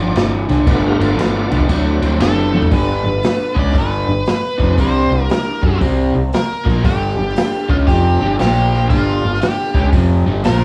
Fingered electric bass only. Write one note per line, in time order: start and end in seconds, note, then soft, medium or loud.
0.00 0.14 G1 medium
0.16 0.46 G1 medium
0.49 0.65 C2 medium
0.68 0.97 G1 loud
1.00 1.17 G1 loud
1.18 1.48 G1 medium
1.51 1.68 C2 medium
1.69 1.99 D2 loud
2.02 2.19 D2 loud
2.20 2.67 F#1 loud
2.72 3.03 G1 medium
3.05 3.23 G1 medium
3.56 3.74 C#2 medium
3.75 4.06 G1 loud
4.08 4.25 G1 medium
4.60 4.77 F1 loud
4.78 5.09 C2 medium
5.11 5.28 C2 medium
5.63 5.80 F#2 medium
5.81 6.12 C2 medium
6.15 6.32 C2 medium
6.66 6.83 A#1 loud
6.84 7.15 G1 loud
7.18 7.35 G1 medium
7.70 7.86 C#2 medium
7.88 8.18 F1 medium
8.21 8.38 G1 medium
8.40 8.87 A#1 medium
8.90 9.21 G1 medium
9.25 9.41 G1 medium
9.75 9.91 C#2 medium
9.93 10.24 F1 medium
10.27 10.43 G1 medium
10.46 10.64 A#1 medium